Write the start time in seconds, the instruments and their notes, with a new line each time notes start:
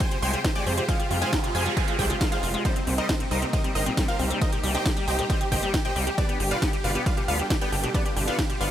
Already playing: string section C3 G3 G#3 F4 G4
0.00 acid bass G3, supersaw synth C5 G5 G#5 C6, synth pluck C6, kick, closed hi-hat, ride
0.11 acid bass C3, synth pluck C5, supersaw synth C5, closed hi-hat
0.22 analog synth bass C2, acid bass G#3, supersaw synth C5 G5 G#5 C6, synth pluck C6, open hi-hat
0.33 acid bass G3, synth pluck C5, supersaw synth C5, closed hi-hat
0.44 acid bass C3, synth pluck C5, supersaw synth C5, kick, snare, closed hi-hat, ride
0.55 acid bass G#3, supersaw synth D5 G5 G#5 D6, synth pluck D6, closed hi-hat
0.66 analog synth bass F2, acid bass G3, synth pluck C5, supersaw synth C5, open hi-hat
0.77 acid bass C3, synth pluck C5, supersaw synth C5, closed hi-hat
0.89 acid bass G#3, supersaw synth F4 G#4 C5 F5, synth pluck F5, kick, closed hi-hat, ride, noise sweep
1.00 acid bass G3, supersaw synth F4, synth pluck F4, closed hi-hat
1.11 analog synth bass F2, acid bass C3, supersaw synth F4, synth pluck F4, open hi-hat
1.22 acid bass G#3, supersaw synth G#4 C5 F5 G#5, synth pluck G#5, snare, closed hi-hat
1.33 acid bass G3, supersaw synth F4, synth pluck F4, kick, snare, closed hi-hat, ride
1.44 acid bass C3, supersaw synth F4, synth pluck F4, closed hi-hat
1.55 analog synth bass F2, acid bass G#3, supersaw synth G#4 C5 F5 G#5, synth pluck G#5, open hi-hat
1.66 acid bass G3, supersaw synth F4, synth pluck F4, closed hi-hat
1.77 acid bass C3, supersaw synth G#4 C5 F5 G#5, synth pluck G#5, kick, closed hi-hat, ride
1.88 acid bass G#3, supersaw synth F4, synth pluck F4, closed hi-hat
1.99 analog synth bass C2, acid bass G3, supersaw synth G4 G#4 C5 G5, synth pluck G5, kick, open hi-hat
2.10 acid bass C3, supersaw synth F4, synth pluck F4, closed hi-hat
2.21 acid bass G#3, supersaw synth F4, synth pluck F4, kick, snare, closed hi-hat, ride
2.32 acid bass G3, supersaw synth F4 G#4 C5 F5, synth pluck F5, closed hi-hat
2.43 analog synth bass F1, acid bass C3, synth pluck F4, supersaw synth F4, open hi-hat
2.54 acid bass G#3, supersaw synth F4, synth pluck F4, closed hi-hat
2.65 acid bass G3, string section A#3 D#4 G4, supersaw synth C4 D#4 G4 C5, synth pluck C5, kick, closed hi-hat, ride
2.76 acid bass C3, supersaw synth C4, synth pluck C4, closed hi-hat
2.87 analog synth bass C2, acid bass A#2, synth pluck C4, supersaw synth C4, open hi-hat
2.98 acid bass G3, supersaw synth D#4 A#4 C5 D#5, synth pluck D#5, closed hi-hat
3.09 acid bass C3, synth pluck C4, supersaw synth C4, kick, snare, closed hi-hat, ride
3.20 acid bass A#2, supersaw synth C4, synth pluck C4, closed hi-hat
3.31 analog synth bass C2, acid bass G3, supersaw synth D#4 A#4 C5 D#5, synth pluck D#5, open hi-hat
3.42 acid bass C3, synth pluck C4, supersaw synth C4, closed hi-hat
3.53 acid bass A#2, supersaw synth D#4 A#4 C5 D#5, synth pluck D#5, kick, closed hi-hat, ride
3.64 acid bass G3, synth pluck C4, supersaw synth C4, closed hi-hat
3.75 analog synth bass G1, acid bass C3, supersaw synth D#4 A#4 C5 D#5, synth pluck D#5, open hi-hat
3.86 acid bass A#2, synth pluck C4, supersaw synth C4, closed hi-hat
3.97 acid bass G3, synth pluck C4, supersaw synth C4, kick, snare, closed hi-hat, ride
4.08 acid bass C3, supersaw synth F4 A#4 C5 F5, synth pluck F5, closed hi-hat
4.19 analog synth bass C2, acid bass A#2, synth pluck C4, supersaw synth C4, open hi-hat
4.30 acid bass G3, synth pluck C4, supersaw synth C4, closed hi-hat
4.41 acid bass C3, supersaw synth D#4 A#4 C5 D#5, synth pluck D#5, kick, closed hi-hat, ride
4.52 acid bass A#2, synth pluck G4, supersaw synth G4, closed hi-hat
4.63 analog synth bass C2, acid bass G3, synth pluck G4, supersaw synth G4, open hi-hat
4.75 acid bass C3, supersaw synth G4 C5 D#5 G5, synth pluck G5, snare, closed hi-hat
4.86 acid bass A#2, synth pluck G4, supersaw synth G4, kick, snare, closed hi-hat, ride
4.97 acid bass G3, supersaw synth G4, synth pluck G4, closed hi-hat
5.08 analog synth bass C2, acid bass C3, supersaw synth G4 C5 D#5 G5, synth pluck G5, open hi-hat
5.19 acid bass A#2, supersaw synth G4, synth pluck G4, closed hi-hat
5.30 acid bass G3, supersaw synth G4 C5 D#5 G5, synth pluck G5, kick, closed hi-hat, ride
5.41 acid bass C3, supersaw synth G4, synth pluck G4, closed hi-hat
5.52 analog synth bass G1, acid bass A#2, supersaw synth G4 C5 D#5 G5, synth pluck G5, kick, open hi-hat
5.63 acid bass G3, supersaw synth G4, synth pluck G4, closed hi-hat
5.74 acid bass C3, supersaw synth G4, synth pluck G4, kick, snare, closed hi-hat, ride
5.85 acid bass A#2, supersaw synth G4 C5 D#5 G5, synth pluck G5, closed hi-hat
5.96 analog synth bass C2, acid bass G3, synth pluck G4, supersaw synth G4, open hi-hat
6.07 acid bass C3, synth pluck G4, supersaw synth G4, closed hi-hat
6.18 acid bass B2, string section B2 D3 D4, supersaw synth D4 G4 B4 D5, synth pluck D5, kick, closed hi-hat, ride
6.29 acid bass B3, synth pluck G4, supersaw synth G4, closed hi-hat
6.40 analog synth bass G1, acid bass D3, synth pluck G4, supersaw synth G4, open hi-hat
6.51 acid bass B2, supersaw synth F4 B4 D5 F5, synth pluck F5, closed hi-hat
6.62 acid bass B3, synth pluck G4, supersaw synth G4, kick, snare, closed hi-hat, ride
6.73 acid bass D3, synth pluck G4, supersaw synth G4, closed hi-hat
6.84 analog synth bass G1, acid bass B2, supersaw synth F4 B4 D5 F5, synth pluck F5, open hi-hat
6.95 acid bass B3, supersaw synth G4, synth pluck G4, closed hi-hat
7.06 acid bass D3, supersaw synth F4 B4 D5 F5, synth pluck F5, kick, closed hi-hat, ride
7.17 acid bass B2, synth pluck G4, supersaw synth G4, closed hi-hat
7.28 analog synth bass D2, acid bass B3, supersaw synth F4 B4 D5 F5, synth pluck F5, open hi-hat
7.39 acid bass D3, synth pluck G4, supersaw synth G4, closed hi-hat
7.50 acid bass B2, synth pluck G4, supersaw synth G4, kick, snare, closed hi-hat, ride
7.61 acid bass B3, supersaw synth G4 B4 D5 G5, synth pluck G5, closed hi-hat
7.72 analog synth bass G1, acid bass D3, synth pluck G4, supersaw synth G4, open hi-hat
7.83 acid bass B2, synth pluck G4, supersaw synth G4, closed hi-hat
7.94 acid bass B3, supersaw synth D4 G4 B4 D5, string section F4, synth pluck D5, kick, closed hi-hat, ride
8.05 acid bass D3, supersaw synth G4, synth pluck G4, closed hi-hat
8.16 analog synth bass G1, acid bass B2, supersaw synth G4, synth pluck G4, open hi-hat
8.27 acid bass B3, supersaw synth F4 B4 D5 F5, synth pluck F5, snare, closed hi-hat
8.38 acid bass D3, synth pluck G4, supersaw synth G4, kick, snare, closed hi-hat, ride
8.50 acid bass B2, synth pluck G4, supersaw synth G4, closed hi-hat
8.61 analog synth bass G1, acid bass B3, supersaw synth F4 B4 D5 F5, synth pluck F5, open hi-hat